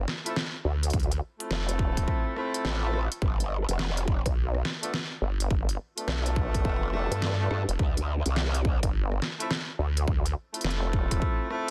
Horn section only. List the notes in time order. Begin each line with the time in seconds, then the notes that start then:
0.26 A3 C4 E4 F4 A4
1.40 A3 C4 E4 F4 A4
2.36 A3 C4 E4 F4 A4
2.83 A3 C4 E4 F4 A4
4.82 A3 B3 D4 F4 A4
5.97 A3 B3 D4 F4 A4
6.93 A3 B3 D4 F4 A4
7.40 A3 B3 D4 F4 A4
9.40 A3 C4 E4 F4 A4
10.54 A3 C4 E4 F4 A4
11.50 A3 C4 E4 F4 A4